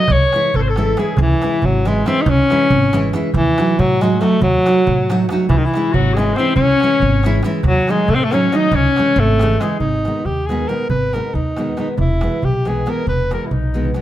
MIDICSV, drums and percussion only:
0, 0, Header, 1, 2, 480
1, 0, Start_track
1, 0, Key_signature, 4, "minor"
1, 0, Tempo, 432588
1, 112, Time_signature, 5, 3, 24, 8
1, 10886, Key_signature, 5, "minor"
1, 15552, End_track
2, 0, Start_track
2, 0, Title_t, "Darbuka"
2, 86, Note_on_c, 9, 64, 106
2, 197, Note_off_c, 9, 64, 0
2, 226, Note_on_c, 9, 63, 25
2, 337, Note_off_c, 9, 63, 0
2, 359, Note_on_c, 9, 63, 78
2, 470, Note_off_c, 9, 63, 0
2, 487, Note_on_c, 9, 63, 23
2, 598, Note_off_c, 9, 63, 0
2, 598, Note_on_c, 9, 64, 76
2, 708, Note_off_c, 9, 64, 0
2, 842, Note_on_c, 9, 63, 73
2, 953, Note_off_c, 9, 63, 0
2, 958, Note_on_c, 9, 63, 27
2, 1069, Note_off_c, 9, 63, 0
2, 1077, Note_on_c, 9, 63, 81
2, 1188, Note_off_c, 9, 63, 0
2, 1189, Note_on_c, 9, 63, 27
2, 1295, Note_on_c, 9, 64, 103
2, 1300, Note_off_c, 9, 63, 0
2, 1406, Note_off_c, 9, 64, 0
2, 1572, Note_on_c, 9, 63, 78
2, 1683, Note_off_c, 9, 63, 0
2, 1798, Note_on_c, 9, 64, 84
2, 1909, Note_off_c, 9, 64, 0
2, 2058, Note_on_c, 9, 63, 65
2, 2169, Note_off_c, 9, 63, 0
2, 2173, Note_on_c, 9, 63, 26
2, 2284, Note_off_c, 9, 63, 0
2, 2289, Note_on_c, 9, 63, 80
2, 2400, Note_off_c, 9, 63, 0
2, 2510, Note_on_c, 9, 64, 115
2, 2621, Note_off_c, 9, 64, 0
2, 2775, Note_on_c, 9, 63, 74
2, 2886, Note_off_c, 9, 63, 0
2, 3000, Note_on_c, 9, 64, 98
2, 3111, Note_off_c, 9, 64, 0
2, 3251, Note_on_c, 9, 63, 81
2, 3362, Note_off_c, 9, 63, 0
2, 3476, Note_on_c, 9, 63, 70
2, 3587, Note_off_c, 9, 63, 0
2, 3701, Note_on_c, 9, 64, 96
2, 3812, Note_off_c, 9, 64, 0
2, 3971, Note_on_c, 9, 63, 80
2, 4082, Note_off_c, 9, 63, 0
2, 4211, Note_on_c, 9, 64, 93
2, 4322, Note_off_c, 9, 64, 0
2, 4452, Note_on_c, 9, 63, 80
2, 4563, Note_off_c, 9, 63, 0
2, 4571, Note_on_c, 9, 63, 25
2, 4676, Note_off_c, 9, 63, 0
2, 4676, Note_on_c, 9, 63, 75
2, 4787, Note_off_c, 9, 63, 0
2, 4893, Note_on_c, 9, 64, 92
2, 5004, Note_off_c, 9, 64, 0
2, 5026, Note_on_c, 9, 63, 26
2, 5137, Note_off_c, 9, 63, 0
2, 5168, Note_on_c, 9, 63, 78
2, 5279, Note_off_c, 9, 63, 0
2, 5283, Note_on_c, 9, 63, 23
2, 5394, Note_off_c, 9, 63, 0
2, 5401, Note_on_c, 9, 64, 83
2, 5512, Note_off_c, 9, 64, 0
2, 5653, Note_on_c, 9, 63, 75
2, 5764, Note_off_c, 9, 63, 0
2, 5868, Note_on_c, 9, 63, 82
2, 5979, Note_off_c, 9, 63, 0
2, 5989, Note_on_c, 9, 63, 34
2, 6100, Note_off_c, 9, 63, 0
2, 6100, Note_on_c, 9, 64, 123
2, 6211, Note_off_c, 9, 64, 0
2, 6365, Note_on_c, 9, 63, 73
2, 6476, Note_off_c, 9, 63, 0
2, 6591, Note_on_c, 9, 64, 90
2, 6702, Note_off_c, 9, 64, 0
2, 6844, Note_on_c, 9, 63, 78
2, 6950, Note_off_c, 9, 63, 0
2, 6950, Note_on_c, 9, 63, 30
2, 7059, Note_off_c, 9, 63, 0
2, 7059, Note_on_c, 9, 63, 72
2, 7170, Note_off_c, 9, 63, 0
2, 7276, Note_on_c, 9, 64, 95
2, 7387, Note_off_c, 9, 64, 0
2, 7548, Note_on_c, 9, 63, 68
2, 7659, Note_off_c, 9, 63, 0
2, 7765, Note_on_c, 9, 64, 74
2, 7876, Note_off_c, 9, 64, 0
2, 8026, Note_on_c, 9, 63, 69
2, 8137, Note_off_c, 9, 63, 0
2, 8147, Note_on_c, 9, 63, 26
2, 8241, Note_off_c, 9, 63, 0
2, 8241, Note_on_c, 9, 63, 71
2, 8352, Note_off_c, 9, 63, 0
2, 8470, Note_on_c, 9, 64, 92
2, 8581, Note_off_c, 9, 64, 0
2, 8738, Note_on_c, 9, 63, 68
2, 8849, Note_off_c, 9, 63, 0
2, 8965, Note_on_c, 9, 64, 87
2, 9076, Note_off_c, 9, 64, 0
2, 9223, Note_on_c, 9, 63, 67
2, 9334, Note_off_c, 9, 63, 0
2, 9343, Note_on_c, 9, 63, 25
2, 9454, Note_off_c, 9, 63, 0
2, 9456, Note_on_c, 9, 63, 68
2, 9567, Note_off_c, 9, 63, 0
2, 9678, Note_on_c, 9, 64, 104
2, 9789, Note_off_c, 9, 64, 0
2, 9946, Note_on_c, 9, 63, 72
2, 10057, Note_off_c, 9, 63, 0
2, 10074, Note_on_c, 9, 63, 27
2, 10172, Note_on_c, 9, 64, 66
2, 10185, Note_off_c, 9, 63, 0
2, 10283, Note_off_c, 9, 64, 0
2, 10294, Note_on_c, 9, 63, 28
2, 10405, Note_off_c, 9, 63, 0
2, 10425, Note_on_c, 9, 63, 81
2, 10536, Note_off_c, 9, 63, 0
2, 10554, Note_on_c, 9, 63, 27
2, 10660, Note_off_c, 9, 63, 0
2, 10660, Note_on_c, 9, 63, 83
2, 10771, Note_off_c, 9, 63, 0
2, 10878, Note_on_c, 9, 64, 71
2, 10989, Note_off_c, 9, 64, 0
2, 11015, Note_on_c, 9, 63, 23
2, 11126, Note_off_c, 9, 63, 0
2, 11149, Note_on_c, 9, 63, 51
2, 11260, Note_off_c, 9, 63, 0
2, 11278, Note_on_c, 9, 63, 20
2, 11384, Note_on_c, 9, 64, 52
2, 11389, Note_off_c, 9, 63, 0
2, 11495, Note_off_c, 9, 64, 0
2, 11641, Note_on_c, 9, 63, 49
2, 11752, Note_off_c, 9, 63, 0
2, 11864, Note_on_c, 9, 63, 54
2, 11975, Note_off_c, 9, 63, 0
2, 12091, Note_on_c, 9, 64, 80
2, 12202, Note_off_c, 9, 64, 0
2, 12224, Note_on_c, 9, 63, 22
2, 12335, Note_off_c, 9, 63, 0
2, 12352, Note_on_c, 9, 63, 58
2, 12462, Note_off_c, 9, 63, 0
2, 12473, Note_on_c, 9, 63, 19
2, 12580, Note_on_c, 9, 64, 55
2, 12584, Note_off_c, 9, 63, 0
2, 12691, Note_off_c, 9, 64, 0
2, 12833, Note_on_c, 9, 63, 64
2, 12944, Note_off_c, 9, 63, 0
2, 13063, Note_on_c, 9, 63, 60
2, 13174, Note_off_c, 9, 63, 0
2, 13288, Note_on_c, 9, 64, 89
2, 13399, Note_off_c, 9, 64, 0
2, 13422, Note_on_c, 9, 63, 22
2, 13533, Note_off_c, 9, 63, 0
2, 13547, Note_on_c, 9, 63, 72
2, 13658, Note_off_c, 9, 63, 0
2, 13666, Note_on_c, 9, 63, 22
2, 13777, Note_off_c, 9, 63, 0
2, 13785, Note_on_c, 9, 64, 70
2, 13896, Note_off_c, 9, 64, 0
2, 14043, Note_on_c, 9, 63, 58
2, 14154, Note_off_c, 9, 63, 0
2, 14279, Note_on_c, 9, 63, 65
2, 14390, Note_off_c, 9, 63, 0
2, 14504, Note_on_c, 9, 64, 74
2, 14615, Note_off_c, 9, 64, 0
2, 14770, Note_on_c, 9, 63, 68
2, 14881, Note_off_c, 9, 63, 0
2, 14992, Note_on_c, 9, 64, 63
2, 15103, Note_off_c, 9, 64, 0
2, 15124, Note_on_c, 9, 63, 23
2, 15234, Note_off_c, 9, 63, 0
2, 15259, Note_on_c, 9, 64, 43
2, 15368, Note_off_c, 9, 64, 0
2, 15368, Note_on_c, 9, 64, 53
2, 15471, Note_on_c, 9, 63, 51
2, 15479, Note_off_c, 9, 64, 0
2, 15552, Note_off_c, 9, 63, 0
2, 15552, End_track
0, 0, End_of_file